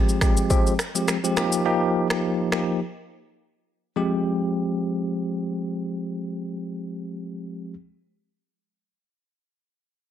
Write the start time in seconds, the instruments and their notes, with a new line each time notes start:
Already playing: tine electric piano F3 G#3 C4 G4
0.09 shaker
0.21 tine electric piano F3 G#3 C4 G4, finger snap, kick, cross-stick, shaker
0.37 shaker
0.50 tine electric piano F3 G#3 C4 G4, kick, shaker
0.67 shaker
0.79 finger snap, cross-stick, shaker
0.95 tine electric piano F3 G#3 C4 G4, shaker
1.08 finger snap, cross-stick, shaker
1.24 tine electric piano F3 G#3 C4 G4, shaker
1.36 tine electric piano F3 A#3 D#4 G4, finger snap, cross-stick, shaker
1.52 shaker
1.65 tine electric piano F3 A#3 D#4 G4
2.10 tine electric piano F3 D#4 G4, finger snap, cross-stick
2.52 tine electric piano F3 A#3 D#4 G4, finger snap, cross-stick
3.96 tine electric piano F3 G#3 C4 G4